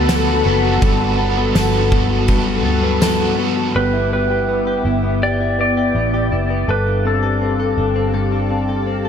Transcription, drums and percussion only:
0.09 snare medium
0.09 ride medium
0.09 tambourine medium
0.82 kick loud
0.82 ride medium
1.55 snare loud
1.55 ride medium
1.55 tambourine medium
1.92 kick medium
2.28 kick medium
2.28 ride medium
3.02 snare loud
3.02 ride medium
3.02 tambourine medium

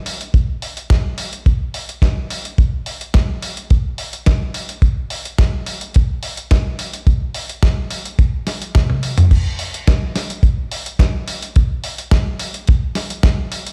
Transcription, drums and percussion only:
0.06 open hi-hat medium
0.21 closed hi-hat medium
0.34 kick loud
0.34 closed hi-hat soft
0.62 open hi-hat loud
0.77 closed hi-hat medium
0.90 kick loud
0.90 snare loud
0.90 closed hi-hat soft
1.18 open hi-hat medium
1.33 closed hi-hat medium
1.46 kick loud
1.46 closed hi-hat soft
1.74 open hi-hat medium
1.89 closed hi-hat medium
2.02 kick loud
2.02 snare loud
2.02 closed hi-hat soft
2.30 open hi-hat medium
2.45 closed hi-hat medium
2.58 kick loud
2.58 closed hi-hat medium
2.86 open hi-hat medium
3.01 closed hi-hat medium
3.14 kick loud
3.14 snare loud
3.14 closed hi-hat soft
3.42 open hi-hat medium
3.57 closed hi-hat medium
3.70 kick loud
3.70 closed hi-hat soft
3.98 open hi-hat loud
4.13 closed hi-hat medium
4.26 kick loud
4.26 snare loud
4.26 closed hi-hat medium
4.54 open hi-hat medium
4.69 closed hi-hat medium
4.82 kick loud
4.82 closed hi-hat medium
5.10 open hi-hat loud
5.25 closed hi-hat medium
5.38 kick loud
5.38 snare loud
5.38 closed hi-hat medium
5.66 open hi-hat medium
5.81 closed hi-hat medium
5.94 kick loud
5.94 closed hi-hat medium
6.23 open hi-hat loud
6.37 closed hi-hat medium
6.51 kick loud
6.51 snare loud
6.51 closed hi-hat medium
6.79 open hi-hat medium
6.93 closed hi-hat medium
7.07 kick loud
7.07 closed hi-hat medium
7.34 open hi-hat loud
7.49 closed hi-hat medium
7.63 kick loud
7.63 snare loud
7.63 closed hi-hat medium
7.91 open hi-hat medium
8.05 closed hi-hat medium
8.19 kick loud
8.19 closed hi-hat medium
8.47 snare medium
8.47 open hi-hat loud
8.62 closed hi-hat medium
8.75 kick loud
8.75 snare loud
8.75 closed hi-hat medium
8.75 high tom medium
8.90 high tom medium
9.03 open hi-hat medium
9.18 closed hi-hat medium
9.18 mid tom medium
9.31 kick loud
9.31 closed hi-hat medium
9.31 crash loud
9.59 open hi-hat loud
9.74 closed hi-hat medium
9.87 kick loud
9.87 snare loud
9.87 closed hi-hat medium
10.16 snare medium
10.16 open hi-hat medium
10.30 closed hi-hat medium
10.43 kick loud
10.43 closed hi-hat medium
10.71 open hi-hat loud
10.86 closed hi-hat medium
10.99 kick loud
10.99 snare loud
10.99 closed hi-hat medium
11.28 open hi-hat medium
11.43 closed hi-hat medium
11.56 kick loud
11.56 closed hi-hat medium
11.84 open hi-hat loud
11.98 closed hi-hat medium
12.11 kick loud
12.11 snare loud
12.11 closed hi-hat medium
12.39 open hi-hat loud
12.54 closed hi-hat medium
12.67 kick loud
12.67 closed hi-hat medium
12.95 snare medium
12.95 open hi-hat loud
13.10 closed hi-hat medium
13.23 kick loud
13.23 snare loud
13.23 closed hi-hat medium
13.52 open hi-hat medium
13.67 closed hi-hat medium

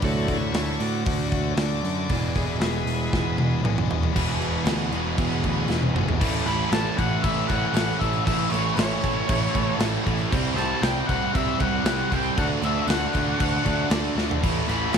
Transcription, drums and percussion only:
0.02 kick loud
0.02 open hi-hat medium
0.28 kick medium
0.28 open hi-hat medium
0.54 snare loud
0.54 open hi-hat medium
0.80 open hi-hat medium
1.06 kick loud
1.06 open hi-hat medium
1.32 kick medium
1.32 open hi-hat medium
1.57 snare loud
1.57 open hi-hat medium
1.85 open hi-hat medium
2.10 kick loud
2.10 open hi-hat medium
2.36 kick medium
2.36 open hi-hat medium
2.61 snare loud
2.61 open hi-hat medium
2.87 open hi-hat medium
3.13 kick loud
3.13 snare medium
3.38 high tom medium
3.65 mid tom medium
3.78 mid tom medium
3.91 floor tom loud
4.03 floor tom medium
4.16 kick loud
4.16 crash loud
4.16 crash medium
4.42 crash medium
4.66 snare loud
4.66 tambourine medium
4.66 crash medium
4.92 crash medium
5.18 kick loud
5.18 crash medium
5.44 kick medium
5.44 crash medium
5.68 snare medium
5.68 tambourine loud
5.83 high tom medium
5.96 mid tom medium
6.08 floor tom medium
6.20 kick loud
6.20 crash loud
6.20 tambourine soft
6.20 crash medium
6.46 snare soft
6.46 tambourine medium
6.46 crash medium
6.72 snare loud
6.72 tambourine loud
6.72 crash medium
6.98 kick medium
6.98 tambourine medium
6.98 crash medium
7.24 kick loud
7.24 tambourine soft
7.24 crash medium
7.49 kick medium
7.49 tambourine medium
7.49 crash medium
7.74 snare loud
7.74 tambourine loud
7.74 crash loud
8.01 kick medium
8.01 crash medium
8.13 tambourine medium
8.27 kick loud
8.27 crash loud
8.50 snare soft
8.50 tambourine medium
8.50 crash medium
8.77 snare loud
8.77 tambourine loud
8.77 crash medium
9.02 kick medium
9.02 tambourine medium
9.02 crash medium
9.28 kick loud
9.28 tambourine soft
9.28 crash loud
9.55 kick medium
9.55 tambourine medium
9.55 crash medium
9.80 snare loud
9.80 tambourine loud
9.80 crash medium
10.07 kick medium
10.07 crash medium
10.18 tambourine medium
10.33 kick loud
10.33 crash medium
10.56 snare soft
10.56 tambourine medium
10.56 crash medium
10.83 snare loud
10.83 tambourine loud
10.83 crash medium
11.09 kick medium
11.09 tambourine medium
11.09 crash medium
11.35 kick loud
11.35 tambourine soft
11.35 crash medium
11.60 kick medium
11.60 crash medium
11.85 snare loud
11.85 tambourine loud
11.85 crash medium
12.12 kick medium
12.12 crash medium
12.23 tambourine medium
12.37 kick loud
12.37 crash medium
12.50 tambourine soft
12.62 tambourine medium
12.62 crash medium
12.88 snare loud
12.88 tambourine loud
12.88 crash medium
13.13 kick medium
13.13 tambourine medium
13.13 crash medium
13.40 kick loud
13.40 crash loud
13.65 kick medium
13.65 tambourine medium
13.65 crash medium
13.90 snare loud
13.90 tambourine medium
13.90 crash medium
14.03 tambourine soft
14.18 snare medium
14.29 floor tom medium
14.29 tambourine medium
14.40 kick loud
14.40 tambourine soft
14.40 crash medium
14.67 snare soft
14.67 tambourine medium
14.67 crash medium
14.93 snare loud
14.93 tambourine medium
14.93 crash medium

